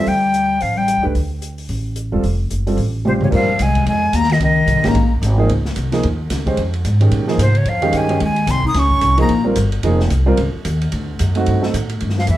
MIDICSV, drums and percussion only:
0, 0, Header, 1, 2, 480
1, 0, Start_track
1, 0, Tempo, 271493
1, 115, Time_signature, 4, 2, 24, 8
1, 21877, End_track
2, 0, Start_track
2, 0, Title_t, "Drums"
2, 114, Note_on_c, 9, 46, 38
2, 291, Note_off_c, 9, 46, 0
2, 597, Note_on_c, 9, 42, 42
2, 773, Note_off_c, 9, 42, 0
2, 1069, Note_on_c, 9, 46, 41
2, 1246, Note_off_c, 9, 46, 0
2, 1554, Note_on_c, 9, 42, 50
2, 1731, Note_off_c, 9, 42, 0
2, 2033, Note_on_c, 9, 46, 38
2, 2210, Note_off_c, 9, 46, 0
2, 2510, Note_on_c, 9, 42, 43
2, 2687, Note_off_c, 9, 42, 0
2, 2794, Note_on_c, 9, 46, 34
2, 2971, Note_off_c, 9, 46, 0
2, 2984, Note_on_c, 9, 46, 38
2, 3160, Note_off_c, 9, 46, 0
2, 3462, Note_on_c, 9, 42, 46
2, 3639, Note_off_c, 9, 42, 0
2, 3952, Note_on_c, 9, 46, 37
2, 4129, Note_off_c, 9, 46, 0
2, 4429, Note_on_c, 9, 42, 42
2, 4605, Note_off_c, 9, 42, 0
2, 4721, Note_on_c, 9, 46, 33
2, 4898, Note_off_c, 9, 46, 0
2, 4906, Note_on_c, 9, 46, 38
2, 5083, Note_off_c, 9, 46, 0
2, 5392, Note_on_c, 9, 48, 43
2, 5569, Note_off_c, 9, 48, 0
2, 5670, Note_on_c, 9, 43, 59
2, 5846, Note_off_c, 9, 43, 0
2, 5870, Note_on_c, 9, 49, 63
2, 5872, Note_on_c, 9, 36, 63
2, 6047, Note_off_c, 9, 49, 0
2, 6048, Note_off_c, 9, 36, 0
2, 6347, Note_on_c, 9, 44, 50
2, 6347, Note_on_c, 9, 51, 58
2, 6524, Note_off_c, 9, 44, 0
2, 6524, Note_off_c, 9, 51, 0
2, 6632, Note_on_c, 9, 51, 42
2, 6639, Note_on_c, 9, 36, 38
2, 6809, Note_off_c, 9, 51, 0
2, 6815, Note_off_c, 9, 36, 0
2, 6832, Note_on_c, 9, 51, 53
2, 7009, Note_off_c, 9, 51, 0
2, 7304, Note_on_c, 9, 44, 53
2, 7304, Note_on_c, 9, 51, 59
2, 7481, Note_off_c, 9, 44, 0
2, 7481, Note_off_c, 9, 51, 0
2, 7484, Note_on_c, 9, 38, 26
2, 7594, Note_on_c, 9, 51, 45
2, 7640, Note_off_c, 9, 38, 0
2, 7640, Note_on_c, 9, 38, 42
2, 7771, Note_off_c, 9, 51, 0
2, 7788, Note_on_c, 9, 51, 49
2, 7817, Note_off_c, 9, 38, 0
2, 7964, Note_off_c, 9, 51, 0
2, 8265, Note_on_c, 9, 44, 49
2, 8265, Note_on_c, 9, 51, 54
2, 8442, Note_off_c, 9, 44, 0
2, 8442, Note_off_c, 9, 51, 0
2, 8553, Note_on_c, 9, 51, 41
2, 8560, Note_on_c, 9, 38, 45
2, 8730, Note_off_c, 9, 51, 0
2, 8737, Note_off_c, 9, 38, 0
2, 8748, Note_on_c, 9, 51, 52
2, 8925, Note_off_c, 9, 51, 0
2, 9240, Note_on_c, 9, 44, 59
2, 9240, Note_on_c, 9, 51, 55
2, 9417, Note_off_c, 9, 44, 0
2, 9417, Note_off_c, 9, 51, 0
2, 9714, Note_on_c, 9, 51, 53
2, 9891, Note_off_c, 9, 51, 0
2, 9997, Note_on_c, 9, 38, 35
2, 10174, Note_off_c, 9, 38, 0
2, 10181, Note_on_c, 9, 44, 45
2, 10181, Note_on_c, 9, 51, 55
2, 10358, Note_off_c, 9, 44, 0
2, 10358, Note_off_c, 9, 51, 0
2, 10471, Note_on_c, 9, 51, 42
2, 10478, Note_on_c, 9, 38, 40
2, 10647, Note_off_c, 9, 51, 0
2, 10655, Note_off_c, 9, 38, 0
2, 10666, Note_on_c, 9, 51, 51
2, 10843, Note_off_c, 9, 51, 0
2, 11140, Note_on_c, 9, 44, 57
2, 11140, Note_on_c, 9, 51, 70
2, 11147, Note_on_c, 9, 38, 36
2, 11317, Note_off_c, 9, 44, 0
2, 11317, Note_off_c, 9, 51, 0
2, 11324, Note_off_c, 9, 38, 0
2, 11430, Note_on_c, 9, 36, 56
2, 11434, Note_on_c, 9, 51, 48
2, 11606, Note_off_c, 9, 36, 0
2, 11611, Note_off_c, 9, 51, 0
2, 11619, Note_on_c, 9, 51, 52
2, 11796, Note_off_c, 9, 51, 0
2, 11908, Note_on_c, 9, 51, 41
2, 12085, Note_off_c, 9, 51, 0
2, 12105, Note_on_c, 9, 44, 54
2, 12105, Note_on_c, 9, 51, 52
2, 12282, Note_off_c, 9, 44, 0
2, 12282, Note_off_c, 9, 51, 0
2, 12387, Note_on_c, 9, 51, 43
2, 12564, Note_off_c, 9, 51, 0
2, 12579, Note_on_c, 9, 51, 58
2, 12756, Note_off_c, 9, 51, 0
2, 12874, Note_on_c, 9, 38, 36
2, 13051, Note_off_c, 9, 38, 0
2, 13069, Note_on_c, 9, 44, 56
2, 13069, Note_on_c, 9, 51, 67
2, 13246, Note_off_c, 9, 44, 0
2, 13246, Note_off_c, 9, 51, 0
2, 13345, Note_on_c, 9, 51, 43
2, 13521, Note_off_c, 9, 51, 0
2, 13534, Note_on_c, 9, 51, 50
2, 13711, Note_off_c, 9, 51, 0
2, 13825, Note_on_c, 9, 51, 45
2, 14001, Note_off_c, 9, 51, 0
2, 14014, Note_on_c, 9, 44, 42
2, 14014, Note_on_c, 9, 51, 54
2, 14191, Note_off_c, 9, 44, 0
2, 14191, Note_off_c, 9, 51, 0
2, 14304, Note_on_c, 9, 51, 43
2, 14480, Note_off_c, 9, 51, 0
2, 14502, Note_on_c, 9, 51, 57
2, 14678, Note_off_c, 9, 51, 0
2, 14784, Note_on_c, 9, 51, 43
2, 14961, Note_off_c, 9, 51, 0
2, 14979, Note_on_c, 9, 44, 59
2, 14979, Note_on_c, 9, 51, 63
2, 15156, Note_off_c, 9, 44, 0
2, 15156, Note_off_c, 9, 51, 0
2, 15260, Note_on_c, 9, 36, 45
2, 15437, Note_off_c, 9, 36, 0
2, 15458, Note_on_c, 9, 51, 58
2, 15465, Note_on_c, 9, 38, 34
2, 15635, Note_off_c, 9, 51, 0
2, 15642, Note_off_c, 9, 38, 0
2, 15742, Note_on_c, 9, 36, 50
2, 15919, Note_off_c, 9, 36, 0
2, 15934, Note_on_c, 9, 44, 45
2, 15934, Note_on_c, 9, 51, 53
2, 16111, Note_off_c, 9, 44, 0
2, 16111, Note_off_c, 9, 51, 0
2, 16224, Note_on_c, 9, 51, 47
2, 16401, Note_off_c, 9, 51, 0
2, 16420, Note_on_c, 9, 51, 49
2, 16597, Note_off_c, 9, 51, 0
2, 16895, Note_on_c, 9, 44, 51
2, 16895, Note_on_c, 9, 51, 71
2, 17071, Note_off_c, 9, 44, 0
2, 17071, Note_off_c, 9, 51, 0
2, 17187, Note_on_c, 9, 51, 45
2, 17363, Note_off_c, 9, 51, 0
2, 17381, Note_on_c, 9, 51, 58
2, 17558, Note_off_c, 9, 51, 0
2, 17681, Note_on_c, 9, 38, 38
2, 17858, Note_off_c, 9, 38, 0
2, 17862, Note_on_c, 9, 44, 51
2, 17862, Note_on_c, 9, 51, 54
2, 18038, Note_off_c, 9, 44, 0
2, 18038, Note_off_c, 9, 51, 0
2, 18339, Note_on_c, 9, 51, 57
2, 18516, Note_off_c, 9, 51, 0
2, 18825, Note_on_c, 9, 44, 50
2, 18825, Note_on_c, 9, 51, 67
2, 19002, Note_off_c, 9, 44, 0
2, 19002, Note_off_c, 9, 51, 0
2, 19121, Note_on_c, 9, 51, 45
2, 19298, Note_off_c, 9, 51, 0
2, 19304, Note_on_c, 9, 51, 62
2, 19480, Note_off_c, 9, 51, 0
2, 19787, Note_on_c, 9, 44, 48
2, 19787, Note_on_c, 9, 51, 62
2, 19964, Note_off_c, 9, 44, 0
2, 19964, Note_off_c, 9, 51, 0
2, 20066, Note_on_c, 9, 51, 44
2, 20242, Note_off_c, 9, 51, 0
2, 20266, Note_on_c, 9, 51, 55
2, 20443, Note_off_c, 9, 51, 0
2, 20562, Note_on_c, 9, 38, 36
2, 20738, Note_off_c, 9, 38, 0
2, 20756, Note_on_c, 9, 44, 59
2, 20756, Note_on_c, 9, 51, 70
2, 20933, Note_off_c, 9, 44, 0
2, 20933, Note_off_c, 9, 51, 0
2, 21030, Note_on_c, 9, 51, 49
2, 21206, Note_off_c, 9, 51, 0
2, 21224, Note_on_c, 9, 51, 49
2, 21385, Note_on_c, 9, 38, 26
2, 21401, Note_off_c, 9, 51, 0
2, 21546, Note_off_c, 9, 38, 0
2, 21546, Note_on_c, 9, 38, 38
2, 21693, Note_on_c, 9, 44, 50
2, 21693, Note_on_c, 9, 51, 54
2, 21723, Note_off_c, 9, 38, 0
2, 21870, Note_off_c, 9, 44, 0
2, 21870, Note_off_c, 9, 51, 0
2, 21877, End_track
0, 0, End_of_file